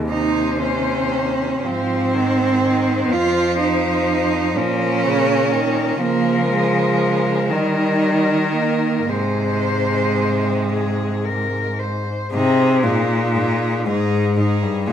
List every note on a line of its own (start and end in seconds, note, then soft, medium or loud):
0.00 1.67 D#2 soft
0.09 1.66 C3 soft
0.09 0.59 D#4 medium
0.09 1.61 C5 soft
0.62 1.68 C#4 soft
1.64 3.11 G#2 soft
1.64 2.16 F3 soft
1.64 3.13 C4 medium
1.64 4.58 C5 soft
2.14 2.62 D#3 soft
2.63 3.13 D#3 soft
3.11 4.59 F2 soft
3.11 4.56 F3 soft
3.11 3.60 F4 medium
3.60 4.58 D#4 medium
4.56 6.02 A#2 soft
4.56 5.07 F3 soft
4.56 6.02 C#4 medium
4.56 6.00 A#4 soft
5.05 5.55 C#3 soft
5.53 6.01 D#3 soft
6.01 7.52 C#3 soft
6.01 7.51 F3 medium
6.01 6.49 A#3 medium
6.01 7.47 A#4 soft
6.50 7.52 G#3 medium
7.50 9.10 D#3 soft
7.50 9.09 D#3 soft
7.50 8.54 G3 medium
7.50 9.10 A#4 soft
8.55 9.11 A#3 soft
9.08 12.08 G#2 soft
9.08 11.52 C3 soft
9.08 11.80 G#3 medium
9.08 10.60 C5 soft
10.70 11.26 G#4 soft
11.25 11.80 A#4 soft
11.79 12.32 C5 soft
12.32 12.41 G#2 soft
12.32 12.85 C3 medium
12.32 12.82 D#4 soft
12.32 12.82 G#4 soft
12.83 12.93 G#2 soft
12.83 13.88 A#2 medium
12.83 13.34 D#4 soft
12.83 13.33 G#4 soft
13.35 13.44 G#2 soft
13.35 13.85 D#4 soft
13.35 13.85 G#4 soft
13.86 14.64 G#2 medium
13.86 13.95 G#2 soft
13.86 14.36 D#4 soft
13.86 14.36 G#4 soft
14.37 14.45 G#2 soft
14.37 14.86 D#4 soft
14.37 14.85 G#4 soft
14.62 14.88 G2 soft
14.87 14.93 G#2 soft
14.87 14.93 A#2 medium
14.87 14.93 D#4 soft
14.87 14.93 G#4 soft